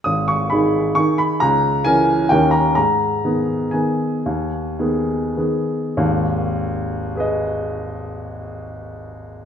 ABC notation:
X:1
M:3/4
L:1/8
Q:1/4=115
K:G#m
V:1 name="Upright piano"
d' c' b2 c' b | a2 g2 =g a | a4 g2- | g4 z2 |
z4 [GBd]2- | [GBd]6 |]
V:2 name="Upright piano"
G,,,2 [D,DG]2 [D,DG]2 | C,,2 [E,CA]2 [D,,D,CA]2 | G,,2 [D,B,G]2 [D,B,G]2 | D,,2 [D,B,G]2 [D,B,G]2 |
[G,,,D,,]6- | [G,,,D,,]6 |]